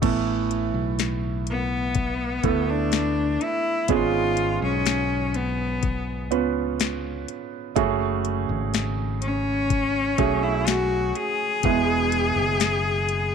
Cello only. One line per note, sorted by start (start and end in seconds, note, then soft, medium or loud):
1.50 2.71 B3 medium
2.70 3.44 D4 medium
3.42 3.93 E4 medium
3.92 4.63 F4 loud
4.63 5.37 C#4 medium
5.35 6.32 B3 medium
9.22 10.45 C#4 loud
10.43 10.69 E4 medium
10.67 11.17 F#4 medium
11.16 13.35 G#4 loud